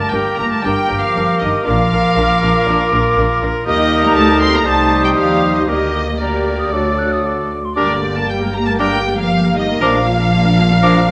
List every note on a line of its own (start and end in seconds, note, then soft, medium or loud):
0.00 0.35 G2 medium
0.00 0.13 A3 medium
0.00 0.13 A5 medium
0.12 0.21 G1 medium
0.12 0.39 G3 medium
0.12 0.64 A#3 medium
0.12 0.20 D4 medium
0.12 0.64 G4 medium
0.12 0.20 A#4 medium
0.12 0.65 A#4 medium
0.12 0.38 G5 medium
0.12 0.39 G5 medium
0.12 0.63 D6 medium
0.37 0.47 G1 medium
0.37 0.52 A#3 medium
0.37 0.46 D4 soft
0.37 0.46 A#4 medium
0.37 0.51 A#5 medium
0.37 0.43 A#5 medium
0.51 0.65 A3 medium
0.51 0.64 A5 medium
0.63 0.73 G1 medium
0.63 1.02 G3 medium
0.63 0.82 A#3 medium
0.63 1.65 A#3 medium
0.63 0.82 D4 medium
0.63 0.72 D4 medium
0.63 1.67 G4 medium
0.63 0.73 A#4 medium
0.63 1.65 A#4 medium
0.63 1.02 G5 loud
0.63 1.03 G5 medium
0.63 1.64 D6 medium
0.88 0.99 G1 medium
0.88 0.96 D4 medium
0.88 0.97 A#4 medium
1.01 1.40 F3 medium
1.01 1.40 F5 medium
1.01 1.41 F5 medium
1.16 1.24 G1 medium
1.16 1.24 D4 medium
1.16 1.24 A#4 medium
1.39 1.50 G1 medium
1.39 1.50 D#3 medium
1.39 1.48 D4 medium
1.39 1.48 A#4 medium
1.39 1.47 D#5 medium
1.39 1.66 D#5 medium
1.64 1.75 A#1 medium
1.64 3.38 F3 medium
1.64 1.82 A#3 medium
1.64 3.62 A#3 medium
1.64 1.83 D4 medium
1.64 1.75 D4 medium
1.64 3.65 F4 medium
1.64 1.75 A#4 medium
1.64 3.63 A#4 medium
1.64 3.37 F5 loud
1.64 3.38 F5 medium
1.64 3.39 D6 medium
1.92 2.00 A#1 medium
1.92 2.00 D4 medium
1.92 2.00 A#4 medium
2.16 2.24 A#1 medium
2.16 2.25 D4 medium
2.16 2.24 A#4 medium
2.42 2.50 A#1 medium
2.42 2.51 D4 medium
2.42 2.50 A#4 medium
2.65 2.75 A#1 medium
2.65 2.84 A#3 medium
2.65 2.83 D4 medium
2.65 2.77 D4 medium
2.65 2.76 A#4 medium
2.92 3.01 A#1 medium
2.92 3.00 D4 medium
2.92 3.00 A#4 medium
3.17 3.25 A#1 medium
3.17 3.25 D4 medium
3.17 3.25 A#4 medium
3.41 3.49 A#1 medium
3.41 3.50 D4 medium
3.41 3.50 A#4 medium
3.65 4.13 D#2 medium
3.65 4.01 D#3 medium
3.65 4.62 G3 medium
3.65 4.18 A#3 medium
3.65 4.62 D#4 medium
3.65 4.63 G4 medium
3.65 4.62 G4 medium
3.65 4.67 A#4 medium
3.65 4.01 D#5 loud
3.65 4.64 D#6 medium
4.03 4.08 A#3 medium
4.03 4.16 A#5 medium
4.03 4.16 A#5 loud
4.15 4.66 D2 medium
4.15 4.24 A3 loud
4.15 4.67 A3 medium
4.15 4.40 A5 loud
4.15 4.41 A5 medium
4.41 4.53 C4 loud
4.41 4.53 C6 medium
4.41 4.53 C6 loud
4.53 4.66 A#3 medium
4.53 4.66 A#5 medium
4.65 5.16 C2 medium
4.65 5.68 G3 medium
4.65 5.67 G3 medium
4.65 5.04 A3 medium
4.65 5.67 D#4 medium
4.65 5.66 G4 medium
4.65 5.67 G4 medium
4.65 5.70 C5 medium
4.65 5.02 A5 medium
4.65 5.04 A5 loud
4.65 5.66 D#6 medium
5.03 5.17 G3 medium
5.03 5.08 G5 medium
5.03 5.09 G5 medium
5.16 5.69 D#2 medium
5.16 5.55 F3 medium
5.16 5.54 F5 medium
5.16 5.55 F5 medium
5.55 5.67 D#3 medium
5.55 5.67 D#5 medium
5.55 5.66 D#5 medium
5.68 6.71 D2 medium
5.68 6.19 D#3 medium
5.68 6.01 G3 medium
5.68 6.18 A#3 medium
5.68 6.19 A#3 medium
5.68 6.18 G4 medium
5.68 6.20 G4 medium
5.68 6.02 G4 medium
5.68 6.02 A#4 medium
5.68 6.19 D#5 medium
5.68 6.01 D6 medium
6.19 7.49 D3 medium
6.19 6.74 G3 medium
6.19 6.71 A#3 medium
6.19 6.71 G4 medium
6.19 6.69 G4 medium
6.19 6.72 G4 medium
6.19 6.68 A#4 medium
6.19 7.51 D5 medium
6.19 7.49 D5 medium
6.19 6.56 A#5 medium
6.59 6.74 D#6 medium
6.70 7.56 D2 medium
6.70 7.52 F#3 medium
6.70 7.51 A3 medium
6.70 7.57 A3 medium
6.70 7.50 D4 soft
6.70 7.50 F#4 medium
6.70 7.57 F#4 medium
6.70 7.50 A4 medium
6.70 7.00 D6 medium
6.98 7.14 F#6 medium
7.12 7.27 D#6 medium
7.25 7.66 D6 medium
7.65 7.75 C6 soft
7.76 9.78 G1 medium
7.76 8.14 D3 medium
7.76 7.95 G3 medium
7.76 7.89 G3 medium
7.76 9.78 A#3 medium
7.76 7.95 D4 medium
7.76 7.89 G4 medium
7.76 9.79 G4 medium
7.76 7.95 A#4 medium
7.76 8.13 D5 medium
7.76 8.01 D6 medium
7.90 8.03 A#3 medium
7.90 8.03 A#4 medium
8.03 8.16 G3 medium
8.03 8.16 G4 medium
8.16 8.29 A3 medium
8.16 8.29 A#3 medium
8.16 8.29 A#4 medium
8.16 8.29 A5 loud
8.16 8.29 A5 medium
8.27 8.54 G3 medium
8.27 8.41 G3 medium
8.27 8.41 G4 medium
8.27 8.54 G5 medium
8.27 8.37 G5 medium
8.41 8.55 A#3 medium
8.41 8.54 A#4 medium
8.53 8.68 G3 medium
8.53 8.67 A#3 medium
8.53 8.68 G4 medium
8.53 8.67 A#5 loud
8.53 8.59 A#5 medium
8.65 8.80 A3 medium
8.65 8.81 A#4 medium
8.65 8.71 A5 medium
8.65 8.80 A5 medium
8.69 8.81 A#3 medium
8.79 9.18 G3 medium
8.79 8.98 G3 medium
8.79 8.93 G3 medium
8.79 8.98 D4 medium
8.79 8.93 G4 medium
8.79 8.98 A#4 medium
8.79 9.18 G5 medium
8.79 9.17 G5 loud
8.79 9.04 D6 medium
8.94 9.06 A#3 medium
8.94 9.06 A#4 medium
9.07 9.19 G3 medium
9.07 9.20 G4 medium
9.17 9.56 F3 medium
9.17 9.32 A#3 medium
9.17 9.32 A#4 medium
9.17 9.56 F5 loud
9.17 9.56 F5 medium
9.31 9.43 G3 medium
9.31 9.43 G4 medium
9.43 9.57 A#3 medium
9.43 9.57 A#4 medium
9.56 9.81 D#3 medium
9.56 9.69 G3 medium
9.56 9.69 G4 medium
9.56 9.81 D#5 medium
9.56 9.82 D#5 medium
9.69 9.80 A#3 medium
9.69 9.82 A#4 medium
9.81 11.11 A#1 medium
9.81 11.11 F3 loud
9.81 10.00 F3 medium
9.81 9.94 A#3 medium
9.81 9.99 D4 medium
9.81 11.11 D4 medium
9.81 11.11 F4 medium
9.81 9.94 F4 medium
9.81 9.99 A#4 medium
9.81 11.11 F5 loud
9.81 10.06 D6 medium
9.95 10.08 D4 medium
9.95 10.08 A#4 medium
10.07 10.20 A#3 medium
10.07 10.20 F4 medium
10.20 10.33 D4 medium
10.20 10.33 A#4 medium
10.33 10.45 A#3 medium
10.33 10.45 F4 medium
10.45 10.58 D4 medium
10.45 10.58 A#4 medium
10.59 10.71 A#3 medium
10.59 10.71 F4 medium
10.71 10.84 D4 medium
10.71 10.84 A#4 medium
10.82 11.00 F3 medium
10.82 10.96 A#3 medium
10.82 11.01 D4 medium
10.82 10.95 F4 medium
10.82 11.00 A#4 medium
10.82 11.07 D6 medium
10.95 11.08 D4 medium
10.95 11.08 A#4 medium